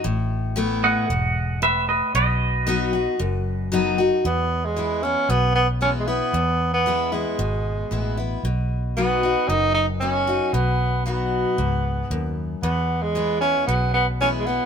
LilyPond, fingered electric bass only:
\new Staff \with { instrumentName = "Fingered electric bass" } { \clef bass \time 4/4 \key e \major \tempo 4 = 114 a,,2 e,,2 | b,,2 fis,,2 | e,2 b,,2 | e,2 gis,,4 a,,4 |
b,,2 fis,,2 | b,,2 cis,4 dis,4 | e,2 b,,2 | }